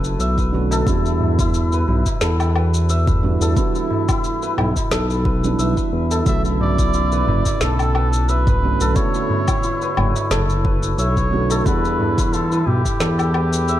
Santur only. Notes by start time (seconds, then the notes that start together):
Already playing: E4 A4 B4
0.20 E5
0.39 B4
0.72 A4
0.87 E4
1.06 E4
1.40 E4
1.74 B4
2.22 A4
2.56 B4
2.90 E5
3.08 B4
3.42 A4
3.57 E4
3.76 E4
4.09 E4
4.43 B4
4.92 A4
5.25 B4
5.59 E5
5.77 B4
6.11 A4
6.27 E4
6.45 E4
6.79 E4
6.94 E4
7.13 B4
7.62 A4
7.96 B4
8.30 E5
8.48 B4
8.81 A4
8.96 E4
9.15 E4
9.49 E4
9.64 E4
9.82 B4
10.31 A4
10.65 B4
10.99 E5
11.17 B4
11.51 A4
11.66 E4
11.85 E4
12.18 E4
12.34 E4
12.52 B4
13.01 A4
13.35 B4
13.69 E5